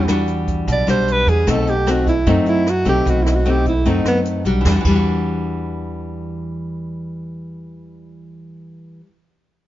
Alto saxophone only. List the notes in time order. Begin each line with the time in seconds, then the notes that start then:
0.72 D5
0.90 C5
1.12 B4
1.29 G#4
1.51 A4
1.69 G4
1.91 F#4
2.09 E4
2.31 D#4
2.48 E4
2.70 F#4
2.89 G4
3.10 F#4
3.23 E4
3.35 F#4
3.50 G4
3.68 E4
3.90 D#4
4.08 B3